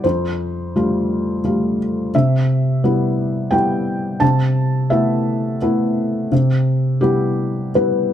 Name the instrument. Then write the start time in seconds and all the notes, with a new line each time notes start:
felt piano
0.04 F2 C5
0.76 G3 A3 F4
1.45 G3 A3 F4
2.15 C3 E5
2.84 G3 B3 E4
3.51 G3 B3 E4 G5
4.20 C3 A5
4.90 A3 B3 E4 E5
5.62 A3 B3 E4
6.32 C3
7.01 G3 B3 E4 G4
7.75 G3 B3 E4 B4